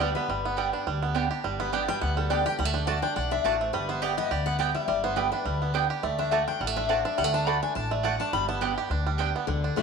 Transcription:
Already playing: upright bass D2, five-string banjo B3 D4, steel-string acoustic guitar D5
0.00 five-string banjo G3, mandolin G5
0.15 five-string banjo B3, steel-string acoustic guitar B4
0.28 upright bass G1, five-string banjo G3
0.45 five-string banjo B3
0.57 five-string banjo G3, mandolin B3 G4 D5 G5
0.73 five-string banjo D4
0.87 upright bass D2, five-string banjo G3
1.02 five-string banjo B3
1.15 mandolin B3 G4 D5 G5, five-string banjo D4
1.31 five-string banjo G4
1.44 upright bass G1, five-string banjo G3
1.60 five-string banjo B3, steel-string acoustic guitar B4
1.73 mandolin B3 G4 D5 G5, five-string banjo D4, steel-string acoustic guitar D5
1.88 five-string banjo G3, steel-string acoustic guitar G5
2.01 upright bass D2, five-string banjo B3, steel-string acoustic guitar F#5
2.17 five-string banjo G3, steel-string acoustic guitar A4
2.30 mandolin B3 G4 D5 G5, five-string banjo D4, steel-string acoustic guitar D5
2.46 five-string banjo G4, steel-string acoustic guitar G5
2.59 upright bass D2, five-string banjo G3, steel-string acoustic guitar F#5
2.65 five-string banjo A3
2.74 five-string banjo D4, steel-string acoustic guitar G5
2.87 mandolin A3 F#4 D5 A5, five-string banjo D4, steel-string acoustic guitar A5
3.02 five-string banjo D4, steel-string acoustic guitar G5
3.16 upright bass B1, five-string banjo D4, steel-string acoustic guitar F#5
3.31 five-string banjo D4, steel-string acoustic guitar E5
3.44 upright bass A1, mandolin A3 F#4 D5 A5, five-string banjo D4, steel-string acoustic guitar D5
3.60 five-string banjo A3, steel-string acoustic guitar C5
3.73 upright bass G1, five-string banjo G3, steel-string acoustic guitar B4
3.89 five-string banjo B3, steel-string acoustic guitar C5
4.02 mandolin B3 G4 D5 G5, five-string banjo G4, steel-string acoustic guitar D5
4.17 five-string banjo B3, steel-string acoustic guitar D#5
4.31 upright bass D2, five-string banjo G4, steel-string acoustic guitar D5
4.46 five-string banjo B3, steel-string acoustic guitar F#5
4.59 mandolin B3 G4 D5 G5, five-string banjo G4, steel-string acoustic guitar G5
4.74 five-string banjo G3, steel-string acoustic guitar E5
4.88 upright bass G1, five-string banjo G3, steel-string acoustic guitar D5
5.04 five-string banjo B3, steel-string acoustic guitar C5
5.16 five-string banjo G3, mandolin B3 G4 D5 G5, steel-string acoustic guitar B4
5.32 five-string banjo D4, steel-string acoustic guitar B4
5.45 upright bass D2, five-string banjo G3
5.62 five-string banjo B3
5.74 mandolin B3 G4 D5 G5, five-string banjo D4
5.90 five-string banjo G4
6.03 upright bass D2, five-string banjo A3, steel-string acoustic guitar D5
6.19 five-string banjo D4, steel-string acoustic guitar E5
6.31 mandolin A3 F#4 D5 A5, five-string banjo A3, steel-string acoustic guitar F#5
6.48 five-string banjo D4, steel-string acoustic guitar G5
6.60 upright bass A1, five-string banjo G3, steel-string acoustic guitar F#5
6.67 five-string banjo A3
6.76 five-string banjo D4, steel-string acoustic guitar E5
6.89 mandolin A3 F#4 D5 A5, five-string banjo D4, steel-string acoustic guitar C5
7.05 five-string banjo D4, steel-string acoustic guitar E5
7.18 upright bass D2, five-string banjo G3, steel-string acoustic guitar F#5
7.24 five-string banjo A3
7.34 five-string banjo D4, steel-string acoustic guitar A5
7.47 mandolin A3 F#4 D5 A5, five-string banjo D4, steel-string acoustic guitar B5
7.63 five-string banjo D4, steel-string acoustic guitar G#5
7.75 upright bass A1, five-string banjo D4, steel-string acoustic guitar A5
7.91 five-string banjo A3, steel-string acoustic guitar D5
8.03 mandolin A3 F#4 D5 A5, five-string banjo D4, steel-string acoustic guitar F#5
8.20 five-string banjo D4, steel-string acoustic guitar A5
8.33 upright bass G1, five-string banjo G3, steel-string acoustic guitar B5
8.49 five-string banjo B3, steel-string acoustic guitar A5
8.61 mandolin B3 G4 D5 G5, five-string banjo D4, steel-string acoustic guitar F#5
8.77 five-string banjo G4, steel-string acoustic guitar G5
8.90 upright bass D2, five-string banjo D4
9.06 five-string banjo G3
9.18 mandolin B3 G4 D5 G5, five-string banjo D4
9.36 five-string banjo B3
9.47 upright bass D2, steel-string acoustic guitar D3, five-string banjo D4
9.64 five-string banjo D4
9.76 upright bass C2, steel-string acoustic guitar D3 A3 D4 F#4, five-string banjo D4

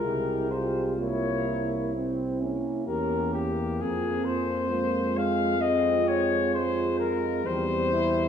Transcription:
Already playing: euphonium G#3, flugelhorn A#4
0.02 tuba C2, french horn section E4, trombone section G4
0.50 trombone section F4, french horn section G4, flugelhorn C5
0.97 euphonium A#3, trombone section E4, french horn section F4, flugelhorn C#5
1.47 french horn section E4
1.95 trombone section C4, euphonium C4
2.41 trombone section A#3, euphonium C#4
2.86 tuba E2, euphonium C#4, french horn section G4, flugelhorn A#4
3.33 flugelhorn G4
3.79 tuba F2, euphonium C4, french horn section F4, flugelhorn G#4
4.25 flugelhorn C5
4.69 trombone section G#3, euphonium A#3, french horn section F4
5.16 euphonium G#3, flugelhorn F5
5.61 euphonium G#3, trombone section C4, flugelhorn D#5
6.07 flugelhorn C#5
6.54 trombone section G#3, flugelhorn C5
6.99 flugelhorn A#4
7.46 tuba E2, euphonium G3, trombone section C4, french horn section G4, flugelhorn C5
7.91 trombone section E4

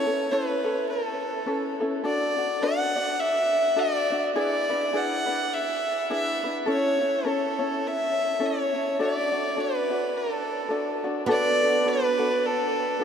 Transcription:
Already playing: fiddle C#5
0.06 ukulele C#4 E4 A4
0.31 ukulele C#4 E4 A4 B4, fiddle B4
0.64 ukulele C#4 E4 A4
0.89 fiddle A4
1.46 ukulele C#4 E4 A4 B4
1.80 ukulele C#4 E4 A4
2.04 ukulele D4 F#4 A4 D5, fiddle D5
2.37 ukulele D4 F#4 D5
2.61 ukulele D4 F#4 A4 D5, fiddle F#5
2.96 ukulele D4 F#4 D5
3.20 fiddle E5
3.76 ukulele D4 F#4 A4 D5, fiddle D5
4.10 ukulele D4 F#4 D5
4.36 ukulele D4 E4 G#4 B4, fiddle D5
4.70 ukulele D4 E4 B4
4.93 ukulele D4 E4 G#4 B4, fiddle F#5
5.26 ukulele D4 E4 B4
5.54 fiddle E5
6.10 ukulele D4 E4 G#4 B4, fiddle E5
6.44 ukulele D4 E4 B4
6.66 ukulele C#4 E4 A4 C#5
6.71 fiddle C#5
7.01 ukulele C#4 E4 C#5
7.25 ukulele C#4 E4 A4 C#5, fiddle A4
7.59 ukulele C#4 E4 C#5
7.87 fiddle E5
8.40 ukulele C#4 E4 A4 C#5
8.46 fiddle C#5
8.74 ukulele C#4 E4 C#5
8.99 ukulele D4 F#4 A4 D5, fiddle D5
9.32 ukulele D4 F#4 D5
9.56 ukulele D4 F#4 A4 D5, fiddle B4
9.90 ukulele D4 F#4 D5
10.17 fiddle A4
10.69 ukulele D4 F#4 A4 D5
11.04 ukulele D4 F#4 D5
11.26 steel-string acoustic guitar B3, ukulele D4 F#4 A4 B4
11.31 fiddle D5
11.61 ukulele D4 F#4 A4
11.85 ukulele D4 F#4 A4 B4, fiddle B4
12.18 ukulele D4 F#4 A4
12.46 fiddle A4
13.00 ukulele D4 F#4 B4

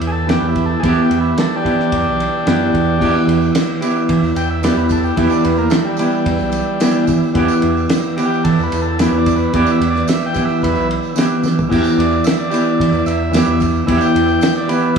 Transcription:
Already playing: clean electric guitar E3 B3 E4 G4, tonewheel organ B4 E5 G5 E6
0.01 fingered electric bass E2, ride
0.07 transistor combo organ G#4
0.12 transistor combo organ A4
0.27 clean electric guitar E3 B3 E4 G4, transistor combo organ G4, snare, ride
0.41 fingered electric bass E2
0.49 transistor combo organ E4
0.56 kick, ride
0.66 transistor combo organ A4
0.80 fingered electric bass E2, clean electric guitar E3, transistor combo organ G#4, kick, ride
0.84 clean electric guitar B3 E4 G4, transistor combo organ A4
1.02 transistor combo organ G4
1.10 fingered electric bass E2, ride
1.21 transistor combo organ E4
1.38 transistor combo organ A4, snare, ride
1.56 transistor combo organ D4 G4
1.64 clean electric guitar E3 B3 E4 G4, kick, ride
1.80 snare
1.92 fingered electric bass E2, kick, ride
2.06 fingered electric bass B1
2.20 ride
2.45 fingered electric bass F#2, clean electric guitar E3 B3 E4 G4, snare, ride
2.74 fingered electric bass E2, kick, ride
2.99 fingered electric bass E2, clean electric guitar E3 B3 E4 G4, kick, tambourine, crash
3.27 fingered electric bass E2, ride, tambourine
3.42 tambourine
3.55 snare, ride, tambourine
3.81 clean electric guitar E3 B3 E4 G4, ride, tambourine
3.96 tambourine
4.09 fingered electric bass E3, kick, ride
4.22 fingered electric bass E2, tambourine
4.36 fingered electric bass E2, transistor combo organ G5, ride, tambourine
4.50 transistor combo organ E5
4.62 clean electric guitar E3 B3 E4 G4, transistor combo organ D5, snare, ride, tambourine
4.77 fingered electric bass E2, transistor combo organ B4, tambourine
4.89 transistor combo organ A4, kick, ride, tambourine
5.03 transistor combo organ G4, tambourine
5.16 fingered electric bass E2, clean electric guitar E3 B3 E4 G4, transistor combo organ E4, kick, ride, tambourine
5.30 transistor combo organ D4, tambourine
5.44 fingered electric bass E2, transistor combo organ B3, ride
5.57 transistor combo organ A#3, tambourine
5.70 transistor combo organ A3, snare, ride, tambourine
5.85 transistor combo organ G3
5.97 transistor combo organ G3, clean electric guitar B3 E4 G4, ride, tambourine
6.01 clean electric guitar E3
6.11 tambourine
6.26 fingered electric bass E2, kick, ride
6.38 fingered electric bass B1, tambourine
6.52 ride, tambourine
6.80 clean electric guitar E3 B3 E4 G4, snare, ride, tambourine
6.94 tambourine
7.07 fingered electric bass E3, kick, ride, tambourine
7.22 tambourine
7.34 fingered electric bass E2, clean electric guitar E3 B3 E4 G4, kick, ride, tambourine
7.48 tambourine
7.62 fingered electric bass E2, ride, tambourine
7.77 tambourine
7.89 snare, ride, tambourine
8.17 clean electric guitar E3 B3 E4 G4, ride, tambourine
8.26 transistor combo organ G4
8.32 tambourine
8.44 fingered electric bass E3, transistor combo organ A4, kick, ride
8.59 fingered electric bass E2, tambourine
8.63 transistor combo organ B4
8.72 fingered electric bass E2, ride, tambourine
8.82 transistor combo organ A4
8.99 clean electric guitar E3 B3 E4 G4, transistor combo organ B4, snare, ride, tambourine
9.12 fingered electric bass E2, tambourine
9.18 transistor combo organ D5
9.26 kick, ride, tambourine
9.36 transistor combo organ B4, tambourine
9.53 fingered electric bass E2, clean electric guitar E3 B3 E4 G4, transistor combo organ D5, kick, ride, tambourine
9.66 tambourine
9.71 transistor combo organ E5
9.80 fingered electric bass E2, ride, tambourine
9.91 transistor combo organ D5
9.95 snare, tambourine
10.08 transistor combo organ E5, snare, ride, tambourine
10.26 transistor combo organ G5
10.34 clean electric guitar E3 B3 E4 G4, kick, ride, tambourine
10.45 transistor combo organ E5, tambourine
10.62 fingered electric bass E2, transistor combo organ B4 E5, kick, ride, tambourine
10.75 fingered electric bass B1, tambourine
10.91 ride
11.03 tambourine
11.15 clean electric guitar E3 B3 E4 G4, snare, ride, tambourine
11.30 tambourine
11.43 fingered electric bass E3, snare, tambourine
11.58 floor tom, tambourine
11.69 fingered electric bass E2, clean electric guitar E3 B3 E4 G4, kick, crash, tambourine
11.84 tambourine
11.98 fingered electric bass E2, transistor combo organ D5, ride, tambourine
12.11 tambourine
12.24 transistor combo organ E5, snare, ride, tambourine
12.37 transistor combo organ D5
12.51 clean electric guitar E3 B3 E4 G4, ride, tambourine
12.65 tambourine
12.80 fingered electric bass E3, kick, ride
12.92 fingered electric bass E2, tambourine
13.06 fingered electric bass E2, transistor combo organ E5, ride, tambourine
13.32 clean electric guitar E3 B3 E4 G4, snare, ride, tambourine
13.46 fingered electric bass E2, tambourine
13.60 kick, ride, tambourine
13.73 tambourine
13.86 fingered electric bass E2, clean electric guitar E3 B3 E4 G4, transistor combo organ E5, kick, ride, tambourine
13.97 transistor combo organ F#5, tambourine
14.01 transistor combo organ G5
14.15 fingered electric bass E2, ride, tambourine
14.28 tambourine
14.41 snare, ride, tambourine
14.57 transistor combo organ D5
14.68 clean electric guitar E3 B3 E4 G4, transistor combo organ B4, ride, tambourine
14.82 tambourine

